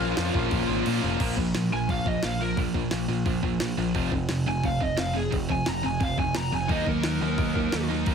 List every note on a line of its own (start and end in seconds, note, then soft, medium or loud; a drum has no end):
0.00 0.12 A#1 loud
0.00 0.67 A#2 loud
0.00 1.02 A#2 loud
0.00 0.67 F3 medium
0.00 1.02 F3 loud
0.00 0.66 A#3 loud
0.00 1.02 A#3 loud
0.00 1.00 C#4 loud
0.00 0.99 F4 medium
0.00 1.03 F5 loud
0.17 0.30 F2 loud
0.17 snare loud
0.17 crash medium
0.34 0.46 A#1 loud
0.34 kick medium
0.51 0.64 A#1 loud
0.51 kick loud
0.51 crash medium
0.67 0.81 G#1 loud
0.67 0.84 A#2 medium
0.67 0.85 F3 medium
0.67 0.84 A#3 loud
0.85 1.19 A#2 medium
0.85 0.98 A#2 loud
0.85 1.19 F3 medium
0.85 1.20 A#3 medium
0.85 crash medium
1.01 1.15 F1 loud
1.01 1.19 A#2 medium
1.01 1.19 F3 medium
1.01 1.19 A#3 medium
1.01 1.18 C#4 medium
1.20 1.35 A#1 medium
1.20 1.36 A#2 medium
1.20 1.36 F3 medium
1.20 1.37 A#3 loud
1.20 kick loud
1.20 crash loud
1.20 crash medium
1.37 1.52 A#1 medium
1.37 1.53 A#2 medium
1.37 1.53 F3 loud
1.37 kick medium
1.54 1.70 A#1 loud
1.54 1.69 A#2 medium
1.54 1.70 F3 medium
1.54 snare loud
1.54 crash medium
1.70 1.87 A#1 medium
1.70 1.86 A#2 medium
1.70 1.87 F3 medium
1.70 1.89 G#5 loud
1.88 2.19 A#1 medium
1.88 2.04 A#2 medium
1.88 2.04 F3 medium
1.88 2.07 F5 medium
1.88 kick loud
1.88 crash medium
2.05 2.21 A#2 medium
2.05 2.21 F3 medium
2.05 2.23 D#5 medium
2.05 kick loud
2.22 2.53 A#1 loud
2.22 2.38 A#2 medium
2.22 2.38 F3 medium
2.22 2.40 F5 medium
2.22 snare loud
2.22 crash medium
2.40 2.55 A#2 medium
2.40 2.56 F3 medium
2.40 2.58 A#4 loud
2.56 2.87 A#1 medium
2.56 2.72 A#2 medium
2.56 2.72 F3 medium
2.56 kick loud
2.56 crash medium
2.74 2.90 A#2 medium
2.74 2.90 F3 loud
2.74 kick medium
2.91 3.07 A#1 medium
2.91 3.07 A#2 medium
2.91 3.07 F3 loud
2.91 snare loud
2.91 crash medium
3.08 3.23 A#1 loud
3.08 3.24 A#2 medium
3.08 3.24 F3 medium
3.25 3.41 A#1 medium
3.25 3.41 A#2 medium
3.25 3.41 F3 medium
3.25 kick loud
3.25 crash medium
3.43 3.58 A#1 loud
3.43 3.58 A#2 medium
3.43 3.59 F3 medium
3.43 kick loud
3.60 3.75 A#1 medium
3.60 3.76 A#2 medium
3.60 3.76 F3 medium
3.60 snare loud
3.60 crash medium
3.78 3.92 A#1 loud
3.78 3.93 A#2 medium
3.78 3.93 F3 medium
3.95 4.10 F1 loud
3.95 4.11 F2 medium
3.95 4.11 C3 loud
3.95 4.11 F3 loud
3.95 kick loud
3.95 crash medium
4.12 4.27 F1 medium
4.12 4.27 F2 medium
4.12 4.28 C3 medium
4.12 kick medium
4.29 4.44 F1 medium
4.29 4.45 F2 medium
4.29 4.45 C3 loud
4.29 snare loud
4.29 crash medium
4.46 4.62 F1 loud
4.46 4.62 F2 medium
4.46 4.62 C3 medium
4.46 4.64 G#5 loud
4.63 4.93 F1 loud
4.63 4.79 F2 medium
4.63 4.79 C3 medium
4.63 4.83 F5 loud
4.63 kick loud
4.63 crash medium
4.81 4.96 F2 medium
4.81 4.96 C3 medium
4.81 4.98 D#5 medium
4.81 kick medium
4.98 5.28 F1 medium
4.98 5.13 F2 medium
4.98 5.14 C3 medium
4.98 5.15 F5 medium
4.98 snare loud
4.98 crash medium
5.14 5.30 F2 medium
5.14 5.30 C3 medium
5.14 5.32 G#4 loud
5.32 5.62 F1 loud
5.32 5.48 F2 medium
5.32 5.48 C3 medium
5.32 kick loud
5.32 crash medium
5.49 5.65 F2 medium
5.49 5.65 C3 medium
5.49 5.68 G#5 loud
5.49 kick medium
5.66 5.82 F1 medium
5.66 5.82 F2 medium
5.66 5.82 C3 medium
5.66 5.86 A#5 medium
5.66 snare loud
5.66 crash medium
5.83 5.99 F1 medium
5.83 5.99 F2 medium
5.83 5.99 C3 medium
5.83 6.03 G#5 loud
6.00 6.16 F1 medium
6.00 6.16 F2 medium
6.00 6.16 C3 medium
6.00 6.19 F5 medium
6.00 kick loud
6.00 crash medium
6.17 6.33 F1 loud
6.17 6.33 F2 medium
6.17 6.33 C3 medium
6.17 6.35 G#5 medium
6.17 kick medium
6.34 6.50 F1 loud
6.34 6.50 F2 medium
6.34 6.50 C3 medium
6.34 6.55 A#5 medium
6.34 snare loud
6.34 crash medium
6.51 6.71 F1 loud
6.51 6.67 F2 medium
6.51 6.68 C3 medium
6.51 6.70 G#5 medium
6.68 6.84 D#2 loud
6.68 6.84 D#3 medium
6.68 7.88 D#3 medium
6.68 6.84 F#3 medium
6.68 6.86 A#3 medium
6.68 7.89 A#3 medium
6.68 7.88 D#4 loud
6.68 6.86 D#4 loud
6.68 6.87 D#5 medium
6.68 kick loud
6.68 crash medium
6.85 7.02 D#2 medium
6.85 7.01 D#3 medium
6.85 7.02 F#3 medium
6.85 7.02 A#3 medium
6.85 7.88 A#4 medium
6.85 kick medium
7.03 7.19 D#2 medium
7.03 7.19 D#3 medium
7.03 7.19 F#3 medium
7.03 7.20 A#3 medium
7.03 snare loud
7.03 crash medium
7.20 7.36 D#2 loud
7.20 7.36 D#3 medium
7.20 7.36 F#3 medium
7.20 7.37 A#3 medium
7.37 7.68 D#2 medium
7.37 7.53 D#3 medium
7.37 7.54 F#3 medium
7.37 7.54 A#3 medium
7.37 kick loud
7.37 crash medium
7.55 7.71 D#3 medium
7.55 7.71 F#3 medium
7.55 7.71 A#3 medium
7.55 kick medium
7.72 8.03 D#2 medium
7.72 7.88 D#3 medium
7.72 7.88 F#3 medium
7.72 7.88 A#3 medium
7.72 snare loud
7.72 crash medium
7.88 8.05 D#3 medium
7.88 8.06 F#3 medium
7.88 8.06 A#3 medium
7.88 8.07 D#4 medium
8.06 8.15 D#2 medium
8.06 8.15 D#3 medium
8.06 8.15 F#3 medium
8.06 8.15 A#3 medium
8.06 8.15 D#4 loud
8.06 kick loud
8.06 crash medium